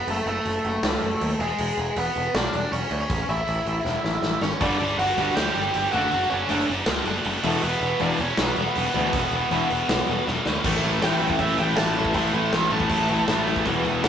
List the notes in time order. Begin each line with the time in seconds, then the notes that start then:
Already playing: B4
0.07 F#1 A3 A4, crash
0.26 F#1 A3 A4, crash
0.45 F#1, crash
0.65 F#1, crash
0.83 C#2, snare, crash
1.02 F#1, crash
1.21 D#2, crash
1.39 E1 G#3 G#4, crash
1.58 E1, crash
1.77 E1, crash
1.96 E1 B3 B4, crash
2.15 E1, crash
2.34 B1 D4 D5, snare, crash
2.53 E1 D4 D5, crash
2.72 E1 C#4 C#5, crash
2.91 D2, crash
3.01 C#4 C#5
3.10 A1, kick, crash
3.29 A1 E4 E5, crash
3.47 A1, crash
3.66 A1, crash
3.85 E1, snare
4.04 A1, snare
4.22 A1, snare
4.41 G#1 C#4 C#5, snare
4.61 G1 G2 D3 G3 D4 D5, kick, crash
4.80 G1 G2 D3 G3, crash
4.98 G1 G2 D3 G3 F#4 F#5, crash
5.17 G1 G2 D3 G3, crash
5.35 D2 G2 D3 G3 G4 G5, snare, crash
5.55 G1 G2 D3 G3, crash
5.74 G1 G2 D3 G3, crash
5.92 F#1 D3 A3 D4 F#4 F#5, crash
6.11 F#1 D3 A3 D4, crash
6.30 F#1 D3 A3 C#4 D4 C#5, crash
6.49 F#1 D3 A3 D4, crash
6.68 F#1 D3 A3 D4, crash
6.86 C#2 D3 A3 D4, snare, crash
7.05 F#1 D3 A3 D4, crash
7.25 F#1 D3 A3 D4, crash
7.43 E1 E2 B2 E3 A3 A4, crash
7.62 E1 E2 B2 E3 B3 B4, crash
7.81 E1 E2 B2 E3, crash
8.00 E1 E2 B2 E3 D4 D5, crash
8.18 E1 E2 B2 E3 C#4 C#5, crash
8.37 B1 E2 B2 E3 B3 B4, snare, crash
8.56 E1 E2 B2 E3, crash
8.76 E1 E2 B2 E3, crash
8.94 D2 E2 B2 E3, crash
9.13 E1 E2 B2 E3, kick, crash
9.31 E1 E2 B2 E3, crash
9.51 E1 E2 B2 E3, crash
9.70 E1 E2 B2 E3, crash
9.89 B1 E2 B2 E3, snare, crash
10.08 E1 E2 B2 E3, crash
10.26 E1 E2 B2 E3, snare
10.45 D2 E2 B2 E3, snare
10.64 A1 A2 E3 A3, kick, crash
10.83 A1 A2 E3 A3, crash
11.02 A1 A2 E3 A3 G5, snare, crash
11.20 A1 A2 E3 A3, crash
11.30 kick
11.38 A1 A2 E3 A3 E5, kick, crash
11.58 A1 A2 E3 A3 G5, crash
11.76 A1 A2 E3 A3 A5, snare, crash
11.95 A2 E3 A3, crash
12.05 kick
12.14 A1 A2 E3 A3 C6, kick, crash
12.33 A1 A2 E3 A3, crash
12.52 A1 A2 E3 A3, snare, crash
12.70 A1 A2 E3 A3 A5, crash
12.80 kick
12.89 A1 A2 E3 A3, kick, crash
13.08 A1 A2 E3 A3, crash
13.28 A1 A2 E3 A3, snare, crash
13.47 A2 E3 A3, crash
13.56 kick
13.65 E1 E2 B2 E3, kick, crash
13.84 E1 E2 B2 E3, crash
14.03 E1 E2 B2 E3, snare, crash